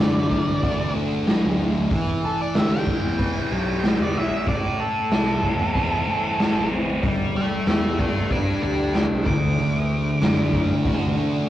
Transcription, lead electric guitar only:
0.00 0.93 D5 medium
2.25 2.40 A4 medium
2.41 2.56 D5 loud
2.57 2.72 E5 medium
2.73 3.97 G5 medium
4.02 4.17 D5 medium
4.17 4.48 E5 medium
4.48 4.79 D5 loud
4.80 6.68 A4 medium
7.36 7.67 E5 medium
7.36 7.67 A5 loud
7.68 7.98 E5 medium
7.68 7.99 A5 medium
8.00 8.29 E5 medium
8.00 8.30 A5 loud
8.32 8.61 A5 medium
8.32 8.62 D6 medium
8.62 8.92 A5 medium
8.62 8.94 D6 medium
8.95 9.25 A5 medium
8.95 9.25 D6 loud
9.26 11.14 D6 medium

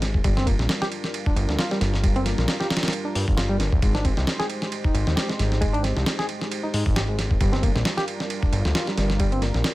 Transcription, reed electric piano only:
0.24 0.36 G3 medium
0.37 0.46 C4 loud
0.46 0.55 A#3 medium
0.82 0.88 G4 loud
1.27 1.58 D4 medium
1.59 1.70 F4 medium
1.71 1.78 G3 loud
2.03 2.15 G3 medium
2.16 2.25 C4 loud
2.25 2.34 A#3 medium
2.60 2.67 G4 medium
3.05 3.37 D4 medium
3.37 3.49 F4 medium
3.49 3.56 G3 loud
3.82 3.94 G#3 medium
3.95 4.04 D4 loud
4.04 4.13 C4 medium
4.39 4.46 G#4 loud
4.84 5.16 D#4 medium
5.16 5.28 G4 medium
5.29 5.60 G#3 medium
5.61 5.73 G#3 medium
5.73 5.83 D4 loud
5.83 5.92 C4 medium
6.19 6.25 G#4 loud
6.63 6.95 D#4 medium
6.96 7.08 G4 medium
7.09 7.40 G#3 medium
7.41 7.52 G3 medium
7.53 7.62 C4 loud
7.63 7.71 A#3 medium
7.97 8.04 G4 loud
8.42 8.74 D4 medium
8.75 8.87 F4 medium
8.87 9.19 G3 medium
9.20 9.31 G3 medium
9.32 9.42 C4 loud
9.42 9.50 A#3 medium

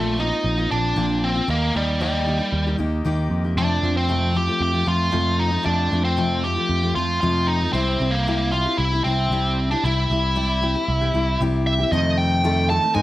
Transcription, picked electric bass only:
0.00 0.31 A#1 medium
0.44 0.66 A#1 medium
0.71 0.92 A#1 medium
0.96 1.40 A#1 medium
1.48 1.70 D#2 medium
1.75 2.39 D#2 medium
2.53 2.74 D#2 medium
2.79 3.01 D#2 medium
3.06 3.29 D#2 medium
3.30 3.54 F2 medium
3.56 3.78 F2 medium
3.82 4.47 F2 medium
4.61 4.83 F2 medium
4.87 5.09 F2 medium
5.13 5.57 F2 loud
5.66 5.88 F2 medium
5.92 6.57 F2 medium
6.70 6.91 F2 medium
6.96 7.18 F2 medium
7.23 7.66 F2 loud
7.73 7.96 C2 medium
8.00 8.65 C2 medium
8.78 9.00 C2 medium
9.05 9.27 C2 medium
9.30 9.74 C2 loud
9.84 10.05 C2 medium
10.10 10.75 C2 medium
10.88 11.10 C2 medium
11.14 11.36 C2 medium
11.40 11.83 C2 loud
11.92 12.78 F2 loud
12.96 13.02 G#2 loud

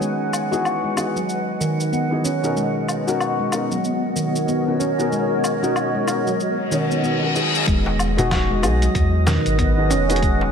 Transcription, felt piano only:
0.00 0.47 B3 medium
0.00 0.48 D#4 medium
0.00 0.48 F#4 medium
0.00 0.48 G#4 medium
0.51 0.93 E3 medium
0.51 0.94 B3 medium
0.51 0.94 D#4 medium
0.51 0.94 F#4 medium
0.51 0.94 G#4 medium
0.96 1.17 E3 medium
0.96 1.17 B3 medium
0.96 1.17 D#4 medium
0.96 1.17 F#4 medium
0.96 1.18 G#4 medium
2.11 2.26 E3 medium
2.11 2.26 B3 medium
2.11 2.26 D#4 medium
2.11 2.26 F#4 medium
2.11 2.27 G#4 medium
2.43 3.02 B2 medium
2.43 3.03 C#4 medium
2.43 3.03 D#4 medium
2.43 3.03 F#4 medium
2.43 3.03 A#4 medium
3.07 3.49 B2 medium
3.07 3.49 C#4 medium
3.07 3.49 D#4 medium
3.07 3.50 F#4 medium
3.07 3.50 A#4 medium
3.51 3.72 B2 medium
3.51 3.72 C#4 medium
3.51 3.72 D#4 medium
3.51 3.73 F#4 medium
3.51 3.73 A#4 medium
4.66 4.81 B2 medium
4.66 4.81 C#4 medium
4.66 4.82 D#4 medium
4.66 4.82 F#4 medium
4.66 4.82 A#4 medium
4.98 5.58 B2 medium
4.98 5.58 C#4 medium
4.98 5.58 D#4 medium
4.98 5.58 F#4 medium
4.98 5.59 A#4 medium
5.62 6.04 B2 medium
5.62 6.04 C#4 medium
5.62 6.04 D#4 medium
5.62 6.05 F#4 medium
5.62 6.05 A#4 medium
6.06 6.27 B2 medium
6.06 6.27 C#4 medium
6.06 6.28 D#4 medium
6.06 6.28 F#4 medium
6.06 6.28 A#4 medium
6.70 7.17 B2 medium
6.70 7.18 C#4 medium
6.70 7.18 D#4 medium
6.70 7.18 F#4 medium
6.70 7.18 C#5 medium
7.21 7.32 B2 medium
7.21 7.32 C#4 medium
7.21 7.32 D#4 medium
7.21 7.32 F#4 medium
7.21 7.33 A#4 medium
7.35 7.99 B3 medium
7.35 7.99 D#4 medium
7.35 7.99 F#4 medium
7.35 8.00 G#4 medium
8.17 8.59 B3 loud
8.17 8.60 D#4 medium
8.17 8.60 F#4 medium
8.17 8.60 G#4 loud
8.62 8.83 B3 medium
8.62 8.83 D#4 medium
8.62 8.83 F#4 medium
8.62 8.84 G#4 medium
9.77 9.92 B3 medium
9.77 9.92 D#4 medium
9.77 9.92 F#4 medium
9.77 9.93 G#4 medium
10.09 10.52 B3 medium
10.09 10.52 D#4 medium
10.09 10.52 F#4 medium
10.09 10.52 G#4 loud

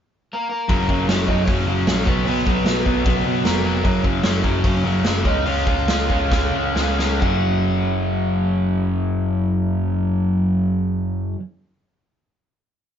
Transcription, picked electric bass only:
0.69 1.07 F#1 medium
1.08 1.46 F#1 medium
1.48 1.67 F#1 medium
1.68 1.87 F#1 medium
1.87 2.07 A#1 medium
2.07 2.25 B1 medium
2.26 2.65 B1 medium
2.66 2.85 B1 medium
2.86 3.05 B1 medium
3.06 3.24 B1 medium
3.25 3.44 B1 medium
3.44 3.83 F1 medium
3.85 4.23 F#1 medium
4.24 4.63 F#1 medium
4.64 4.84 F#1 medium
4.84 5.03 F#1 medium
5.04 5.24 F#1 medium
5.25 5.44 C#2 medium
5.45 5.86 C#2 medium
5.87 6.08 C#2 medium
6.10 6.30 C#2 medium
6.32 6.52 C#2 medium
6.53 6.74 C#2 medium
6.76 7.19 C#2 medium
7.23 11.34 F#1 medium

